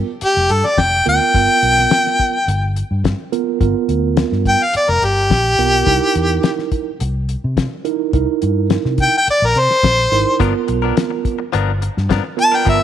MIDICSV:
0, 0, Header, 1, 8, 480
1, 0, Start_track
1, 0, Tempo, 566038
1, 1142, Time_signature, 4, 2, 24, 8
1, 10882, End_track
2, 0, Start_track
2, 0, Title_t, "Harmonica"
2, 0, Program_c, 0, 22
2, 208, Note_on_c, 0, 67, 94
2, 440, Note_on_c, 0, 69, 80
2, 452, Note_off_c, 0, 67, 0
2, 563, Note_on_c, 0, 74, 83
2, 576, Note_off_c, 0, 69, 0
2, 682, Note_on_c, 0, 79, 84
2, 695, Note_off_c, 0, 74, 0
2, 905, Note_off_c, 0, 79, 0
2, 922, Note_on_c, 0, 79, 100
2, 2318, Note_off_c, 0, 79, 0
2, 3801, Note_on_c, 0, 79, 93
2, 3928, Note_on_c, 0, 77, 77
2, 3941, Note_off_c, 0, 79, 0
2, 4026, Note_off_c, 0, 77, 0
2, 4040, Note_on_c, 0, 74, 85
2, 4156, Note_on_c, 0, 70, 86
2, 4169, Note_off_c, 0, 74, 0
2, 4278, Note_on_c, 0, 67, 90
2, 4291, Note_off_c, 0, 70, 0
2, 5676, Note_off_c, 0, 67, 0
2, 7645, Note_on_c, 0, 79, 90
2, 7750, Note_off_c, 0, 79, 0
2, 7778, Note_on_c, 0, 79, 82
2, 7871, Note_off_c, 0, 79, 0
2, 7889, Note_on_c, 0, 74, 94
2, 8021, Note_on_c, 0, 70, 89
2, 8034, Note_off_c, 0, 74, 0
2, 8135, Note_on_c, 0, 72, 103
2, 8148, Note_off_c, 0, 70, 0
2, 8817, Note_off_c, 0, 72, 0
2, 10520, Note_on_c, 0, 81, 117
2, 10648, Note_on_c, 0, 79, 87
2, 10661, Note_off_c, 0, 81, 0
2, 10744, Note_off_c, 0, 79, 0
2, 10759, Note_on_c, 0, 76, 87
2, 10882, Note_off_c, 0, 76, 0
2, 10882, End_track
3, 0, Start_track
3, 0, Title_t, "Tine electric piano"
3, 0, Program_c, 1, 4
3, 894, Note_on_c, 1, 59, 68
3, 898, Note_on_c, 1, 70, 81
3, 899, Note_on_c, 1, 65, 63
3, 1114, Note_off_c, 1, 59, 0
3, 1116, Note_off_c, 1, 65, 0
3, 1116, Note_off_c, 1, 70, 0
3, 1148, Note_on_c, 1, 65, 61
3, 1148, Note_on_c, 1, 70, 84
3, 1149, Note_on_c, 1, 59, 67
3, 2006, Note_off_c, 1, 65, 0
3, 2007, Note_off_c, 1, 59, 0
3, 2007, Note_off_c, 1, 70, 0
3, 2818, Note_on_c, 1, 65, 75
3, 2819, Note_on_c, 1, 59, 84
3, 2819, Note_on_c, 1, 70, 93
3, 3035, Note_off_c, 1, 65, 0
3, 3036, Note_off_c, 1, 59, 0
3, 3036, Note_off_c, 1, 70, 0
3, 3056, Note_on_c, 1, 70, 96
3, 3057, Note_on_c, 1, 65, 74
3, 3058, Note_on_c, 1, 59, 83
3, 3921, Note_off_c, 1, 65, 0
3, 3921, Note_off_c, 1, 70, 0
3, 3922, Note_off_c, 1, 59, 0
3, 4740, Note_on_c, 1, 59, 73
3, 4741, Note_on_c, 1, 65, 65
3, 4741, Note_on_c, 1, 70, 81
3, 4956, Note_off_c, 1, 59, 0
3, 4957, Note_off_c, 1, 65, 0
3, 4957, Note_off_c, 1, 70, 0
3, 4973, Note_on_c, 1, 64, 80
3, 4973, Note_on_c, 1, 70, 94
3, 4975, Note_on_c, 1, 63, 79
3, 5839, Note_off_c, 1, 64, 0
3, 5839, Note_off_c, 1, 70, 0
3, 5840, Note_off_c, 1, 63, 0
3, 6654, Note_on_c, 1, 64, 70
3, 6655, Note_on_c, 1, 63, 80
3, 6656, Note_on_c, 1, 70, 90
3, 6873, Note_off_c, 1, 64, 0
3, 6874, Note_off_c, 1, 63, 0
3, 6874, Note_off_c, 1, 70, 0
3, 6901, Note_on_c, 1, 64, 73
3, 6902, Note_on_c, 1, 63, 81
3, 6902, Note_on_c, 1, 70, 92
3, 7762, Note_off_c, 1, 64, 0
3, 7763, Note_off_c, 1, 63, 0
3, 7763, Note_off_c, 1, 70, 0
3, 8579, Note_on_c, 1, 64, 68
3, 8584, Note_on_c, 1, 63, 68
3, 8586, Note_on_c, 1, 70, 83
3, 8795, Note_off_c, 1, 64, 0
3, 8798, Note_off_c, 1, 63, 0
3, 8799, Note_off_c, 1, 70, 0
3, 8815, Note_on_c, 1, 59, 85
3, 8817, Note_on_c, 1, 70, 95
3, 8819, Note_on_c, 1, 65, 77
3, 9679, Note_off_c, 1, 59, 0
3, 9680, Note_off_c, 1, 70, 0
3, 9681, Note_off_c, 1, 65, 0
3, 10489, Note_on_c, 1, 59, 67
3, 10490, Note_on_c, 1, 70, 79
3, 10492, Note_on_c, 1, 65, 64
3, 10709, Note_off_c, 1, 59, 0
3, 10709, Note_off_c, 1, 70, 0
3, 10711, Note_off_c, 1, 65, 0
3, 10736, Note_on_c, 1, 65, 64
3, 10737, Note_on_c, 1, 59, 71
3, 10737, Note_on_c, 1, 70, 73
3, 10882, Note_off_c, 1, 59, 0
3, 10882, Note_off_c, 1, 65, 0
3, 10882, Note_off_c, 1, 70, 0
3, 10882, End_track
4, 0, Start_track
4, 0, Title_t, "Clean electric guitar"
4, 0, Program_c, 2, 27
4, 8817, Note_on_c, 2, 53, 81
4, 8820, Note_on_c, 2, 59, 94
4, 8825, Note_on_c, 2, 62, 95
4, 8831, Note_on_c, 2, 70, 88
4, 8930, Note_off_c, 2, 70, 0
4, 8937, Note_off_c, 2, 62, 0
4, 8943, Note_off_c, 2, 53, 0
4, 8945, Note_off_c, 2, 59, 0
4, 9177, Note_on_c, 2, 70, 59
4, 9190, Note_on_c, 2, 62, 51
4, 9200, Note_on_c, 2, 59, 51
4, 9291, Note_off_c, 2, 59, 0
4, 9294, Note_off_c, 2, 62, 0
4, 9296, Note_off_c, 2, 70, 0
4, 9774, Note_on_c, 2, 53, 83
4, 9781, Note_on_c, 2, 59, 99
4, 9786, Note_on_c, 2, 62, 99
4, 9791, Note_on_c, 2, 70, 86
4, 9924, Note_off_c, 2, 53, 0
4, 9928, Note_off_c, 2, 59, 0
4, 9930, Note_off_c, 2, 62, 0
4, 9933, Note_off_c, 2, 70, 0
4, 10256, Note_on_c, 2, 53, 64
4, 10264, Note_on_c, 2, 59, 69
4, 10274, Note_on_c, 2, 62, 70
4, 10277, Note_on_c, 2, 70, 65
4, 10373, Note_off_c, 2, 70, 0
4, 10380, Note_off_c, 2, 62, 0
4, 10382, Note_off_c, 2, 53, 0
4, 10386, Note_off_c, 2, 59, 0
4, 10614, Note_on_c, 2, 70, 56
4, 10626, Note_on_c, 2, 62, 51
4, 10636, Note_on_c, 2, 59, 43
4, 10722, Note_off_c, 2, 59, 0
4, 10727, Note_on_c, 2, 53, 73
4, 10728, Note_off_c, 2, 62, 0
4, 10732, Note_off_c, 2, 70, 0
4, 10732, Note_on_c, 2, 59, 78
4, 10738, Note_on_c, 2, 62, 77
4, 10742, Note_on_c, 2, 70, 77
4, 10851, Note_off_c, 2, 70, 0
4, 10854, Note_off_c, 2, 62, 0
4, 10857, Note_off_c, 2, 53, 0
4, 10859, Note_off_c, 2, 59, 0
4, 10882, End_track
5, 0, Start_track
5, 0, Title_t, "Fingered electric bass"
5, 0, Program_c, 3, 33
5, 310, Note_on_c, 3, 29, 89
5, 399, Note_off_c, 3, 29, 0
5, 426, Note_on_c, 3, 43, 84
5, 522, Note_off_c, 3, 43, 0
5, 660, Note_on_c, 3, 29, 87
5, 848, Note_off_c, 3, 29, 0
5, 904, Note_on_c, 3, 38, 91
5, 1000, Note_off_c, 3, 38, 0
5, 1143, Note_on_c, 3, 31, 94
5, 1239, Note_off_c, 3, 31, 0
5, 1379, Note_on_c, 3, 35, 86
5, 1567, Note_off_c, 3, 35, 0
5, 2100, Note_on_c, 3, 31, 106
5, 2385, Note_off_c, 3, 31, 0
5, 2466, Note_on_c, 3, 43, 78
5, 2653, Note_off_c, 3, 43, 0
5, 3062, Note_on_c, 3, 31, 99
5, 3159, Note_off_c, 3, 31, 0
5, 3295, Note_on_c, 3, 38, 86
5, 3582, Note_off_c, 3, 38, 0
5, 3664, Note_on_c, 3, 43, 77
5, 3852, Note_off_c, 3, 43, 0
5, 4144, Note_on_c, 3, 29, 91
5, 4235, Note_off_c, 3, 29, 0
5, 4256, Note_on_c, 3, 31, 83
5, 4475, Note_off_c, 3, 31, 0
5, 4499, Note_on_c, 3, 34, 75
5, 4716, Note_off_c, 3, 34, 0
5, 4735, Note_on_c, 3, 35, 77
5, 4954, Note_off_c, 3, 35, 0
5, 4975, Note_on_c, 3, 36, 95
5, 5075, Note_off_c, 3, 36, 0
5, 5220, Note_on_c, 3, 40, 88
5, 5407, Note_off_c, 3, 40, 0
5, 5945, Note_on_c, 3, 36, 99
5, 6228, Note_off_c, 3, 36, 0
5, 6311, Note_on_c, 3, 48, 90
5, 6496, Note_off_c, 3, 48, 0
5, 6900, Note_on_c, 3, 36, 96
5, 6997, Note_off_c, 3, 36, 0
5, 7146, Note_on_c, 3, 43, 85
5, 7428, Note_off_c, 3, 43, 0
5, 7506, Note_on_c, 3, 48, 86
5, 7693, Note_off_c, 3, 48, 0
5, 7989, Note_on_c, 3, 34, 90
5, 8077, Note_off_c, 3, 34, 0
5, 8105, Note_on_c, 3, 48, 96
5, 8200, Note_off_c, 3, 48, 0
5, 8342, Note_on_c, 3, 34, 86
5, 8529, Note_off_c, 3, 34, 0
5, 8578, Note_on_c, 3, 32, 91
5, 8676, Note_off_c, 3, 32, 0
5, 8820, Note_on_c, 3, 31, 101
5, 8917, Note_off_c, 3, 31, 0
5, 9064, Note_on_c, 3, 35, 88
5, 9249, Note_off_c, 3, 35, 0
5, 9788, Note_on_c, 3, 31, 102
5, 10068, Note_off_c, 3, 31, 0
5, 10153, Note_on_c, 3, 43, 86
5, 10336, Note_off_c, 3, 43, 0
5, 10741, Note_on_c, 3, 31, 95
5, 10837, Note_off_c, 3, 31, 0
5, 10882, End_track
6, 0, Start_track
6, 0, Title_t, "Muted clean electric guitar strokes"
6, 8940, Note_on_c, 9, 29, 49
6, 9025, Note_off_c, 9, 29, 0
6, 9055, Note_on_c, 9, 29, 45
6, 9140, Note_off_c, 9, 29, 0
6, 9297, Note_on_c, 9, 29, 43
6, 9382, Note_off_c, 9, 29, 0
6, 9417, Note_on_c, 9, 29, 43
6, 9501, Note_off_c, 9, 29, 0
6, 9656, Note_on_c, 9, 29, 44
6, 9740, Note_off_c, 9, 29, 0
6, 10021, Note_on_c, 9, 29, 47
6, 10106, Note_off_c, 9, 29, 0
6, 10383, Note_on_c, 9, 29, 46
6, 10468, Note_off_c, 9, 29, 0
6, 10493, Note_on_c, 9, 29, 35
6, 10578, Note_off_c, 9, 29, 0
6, 10882, End_track
7, 0, Start_track
7, 0, Title_t, "Muted fingered electric bass strokes"
7, 184, Note_on_c, 9, 29, 37
7, 269, Note_off_c, 9, 29, 0
7, 4024, Note_on_c, 9, 29, 37
7, 4108, Note_off_c, 9, 29, 0
7, 7866, Note_on_c, 9, 29, 37
7, 7951, Note_off_c, 9, 29, 0
7, 10882, End_track
8, 0, Start_track
8, 0, Title_t, "Drums"
8, 180, Note_on_c, 9, 42, 91
8, 264, Note_off_c, 9, 42, 0
8, 417, Note_on_c, 9, 42, 66
8, 502, Note_off_c, 9, 42, 0
8, 548, Note_on_c, 9, 38, 31
8, 633, Note_off_c, 9, 38, 0
8, 659, Note_on_c, 9, 36, 76
8, 660, Note_on_c, 9, 42, 79
8, 665, Note_on_c, 9, 38, 101
8, 744, Note_off_c, 9, 36, 0
8, 745, Note_off_c, 9, 42, 0
8, 750, Note_off_c, 9, 38, 0
8, 899, Note_on_c, 9, 42, 67
8, 984, Note_off_c, 9, 42, 0
8, 1140, Note_on_c, 9, 36, 113
8, 1141, Note_on_c, 9, 42, 86
8, 1225, Note_off_c, 9, 36, 0
8, 1226, Note_off_c, 9, 42, 0
8, 1379, Note_on_c, 9, 42, 56
8, 1463, Note_off_c, 9, 42, 0
8, 1512, Note_on_c, 9, 38, 33
8, 1597, Note_off_c, 9, 38, 0
8, 1618, Note_on_c, 9, 42, 81
8, 1623, Note_on_c, 9, 38, 110
8, 1703, Note_off_c, 9, 42, 0
8, 1708, Note_off_c, 9, 38, 0
8, 1753, Note_on_c, 9, 38, 34
8, 1838, Note_off_c, 9, 38, 0
8, 1862, Note_on_c, 9, 36, 83
8, 1863, Note_on_c, 9, 42, 61
8, 1946, Note_off_c, 9, 36, 0
8, 1948, Note_off_c, 9, 42, 0
8, 2105, Note_on_c, 9, 42, 85
8, 2190, Note_off_c, 9, 42, 0
8, 2343, Note_on_c, 9, 42, 58
8, 2428, Note_off_c, 9, 42, 0
8, 2581, Note_on_c, 9, 36, 78
8, 2584, Note_on_c, 9, 42, 70
8, 2589, Note_on_c, 9, 38, 102
8, 2666, Note_off_c, 9, 36, 0
8, 2669, Note_off_c, 9, 42, 0
8, 2674, Note_off_c, 9, 38, 0
8, 2822, Note_on_c, 9, 42, 57
8, 2906, Note_off_c, 9, 42, 0
8, 3059, Note_on_c, 9, 36, 114
8, 3059, Note_on_c, 9, 42, 78
8, 3143, Note_off_c, 9, 36, 0
8, 3144, Note_off_c, 9, 42, 0
8, 3297, Note_on_c, 9, 42, 56
8, 3382, Note_off_c, 9, 42, 0
8, 3534, Note_on_c, 9, 42, 86
8, 3539, Note_on_c, 9, 38, 113
8, 3619, Note_off_c, 9, 42, 0
8, 3624, Note_off_c, 9, 38, 0
8, 3668, Note_on_c, 9, 38, 33
8, 3753, Note_off_c, 9, 38, 0
8, 3778, Note_on_c, 9, 36, 81
8, 3780, Note_on_c, 9, 42, 61
8, 3862, Note_off_c, 9, 36, 0
8, 3865, Note_off_c, 9, 42, 0
8, 4015, Note_on_c, 9, 42, 89
8, 4100, Note_off_c, 9, 42, 0
8, 4259, Note_on_c, 9, 42, 67
8, 4344, Note_off_c, 9, 42, 0
8, 4497, Note_on_c, 9, 36, 80
8, 4498, Note_on_c, 9, 42, 80
8, 4503, Note_on_c, 9, 38, 96
8, 4582, Note_off_c, 9, 36, 0
8, 4583, Note_off_c, 9, 42, 0
8, 4588, Note_off_c, 9, 38, 0
8, 4738, Note_on_c, 9, 42, 64
8, 4822, Note_off_c, 9, 42, 0
8, 4976, Note_on_c, 9, 36, 103
8, 4976, Note_on_c, 9, 42, 90
8, 5061, Note_off_c, 9, 36, 0
8, 5061, Note_off_c, 9, 42, 0
8, 5217, Note_on_c, 9, 42, 59
8, 5302, Note_off_c, 9, 42, 0
8, 5455, Note_on_c, 9, 42, 85
8, 5460, Note_on_c, 9, 38, 117
8, 5540, Note_off_c, 9, 42, 0
8, 5545, Note_off_c, 9, 38, 0
8, 5586, Note_on_c, 9, 38, 33
8, 5670, Note_off_c, 9, 38, 0
8, 5695, Note_on_c, 9, 42, 63
8, 5696, Note_on_c, 9, 36, 84
8, 5780, Note_off_c, 9, 42, 0
8, 5781, Note_off_c, 9, 36, 0
8, 5938, Note_on_c, 9, 42, 81
8, 6023, Note_off_c, 9, 42, 0
8, 6180, Note_on_c, 9, 42, 60
8, 6265, Note_off_c, 9, 42, 0
8, 6418, Note_on_c, 9, 36, 75
8, 6420, Note_on_c, 9, 42, 75
8, 6425, Note_on_c, 9, 38, 111
8, 6503, Note_off_c, 9, 36, 0
8, 6505, Note_off_c, 9, 42, 0
8, 6510, Note_off_c, 9, 38, 0
8, 6657, Note_on_c, 9, 42, 59
8, 6742, Note_off_c, 9, 42, 0
8, 6897, Note_on_c, 9, 36, 109
8, 6897, Note_on_c, 9, 42, 78
8, 6982, Note_off_c, 9, 36, 0
8, 6982, Note_off_c, 9, 42, 0
8, 7138, Note_on_c, 9, 42, 59
8, 7222, Note_off_c, 9, 42, 0
8, 7378, Note_on_c, 9, 42, 80
8, 7383, Note_on_c, 9, 38, 115
8, 7462, Note_off_c, 9, 42, 0
8, 7467, Note_off_c, 9, 38, 0
8, 7508, Note_on_c, 9, 38, 32
8, 7592, Note_off_c, 9, 38, 0
8, 7613, Note_on_c, 9, 42, 59
8, 7617, Note_on_c, 9, 36, 87
8, 7698, Note_off_c, 9, 42, 0
8, 7702, Note_off_c, 9, 36, 0
8, 7860, Note_on_c, 9, 42, 74
8, 7944, Note_off_c, 9, 42, 0
8, 8099, Note_on_c, 9, 42, 62
8, 8184, Note_off_c, 9, 42, 0
8, 8231, Note_on_c, 9, 38, 30
8, 8316, Note_off_c, 9, 38, 0
8, 8339, Note_on_c, 9, 36, 84
8, 8342, Note_on_c, 9, 42, 75
8, 8347, Note_on_c, 9, 38, 99
8, 8424, Note_off_c, 9, 36, 0
8, 8427, Note_off_c, 9, 42, 0
8, 8432, Note_off_c, 9, 38, 0
8, 8585, Note_on_c, 9, 42, 69
8, 8670, Note_off_c, 9, 42, 0
8, 8819, Note_on_c, 9, 36, 107
8, 8821, Note_on_c, 9, 42, 89
8, 8904, Note_off_c, 9, 36, 0
8, 8906, Note_off_c, 9, 42, 0
8, 9057, Note_on_c, 9, 42, 60
8, 9142, Note_off_c, 9, 42, 0
8, 9302, Note_on_c, 9, 42, 92
8, 9307, Note_on_c, 9, 38, 112
8, 9387, Note_off_c, 9, 42, 0
8, 9392, Note_off_c, 9, 38, 0
8, 9540, Note_on_c, 9, 36, 90
8, 9543, Note_on_c, 9, 42, 69
8, 9625, Note_off_c, 9, 36, 0
8, 9627, Note_off_c, 9, 42, 0
8, 9780, Note_on_c, 9, 42, 85
8, 9865, Note_off_c, 9, 42, 0
8, 10024, Note_on_c, 9, 42, 65
8, 10108, Note_off_c, 9, 42, 0
8, 10156, Note_on_c, 9, 38, 33
8, 10240, Note_off_c, 9, 38, 0
8, 10260, Note_on_c, 9, 36, 81
8, 10264, Note_on_c, 9, 42, 80
8, 10269, Note_on_c, 9, 38, 101
8, 10344, Note_off_c, 9, 36, 0
8, 10349, Note_off_c, 9, 42, 0
8, 10354, Note_off_c, 9, 38, 0
8, 10505, Note_on_c, 9, 42, 66
8, 10589, Note_off_c, 9, 42, 0
8, 10740, Note_on_c, 9, 36, 113
8, 10743, Note_on_c, 9, 42, 81
8, 10825, Note_off_c, 9, 36, 0
8, 10828, Note_off_c, 9, 42, 0
8, 10882, End_track
0, 0, End_of_file